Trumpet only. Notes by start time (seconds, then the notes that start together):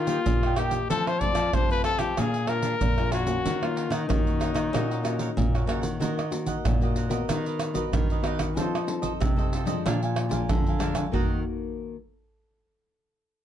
Already playing: F4
0.57 G4
0.90 A4
1.08 C5
1.20 D5
1.54 C5
1.72 B4
1.85 A4
2.00 G4
2.19 G#4
2.48 A#4
3.12 F#4
3.64 F4
3.93 D#4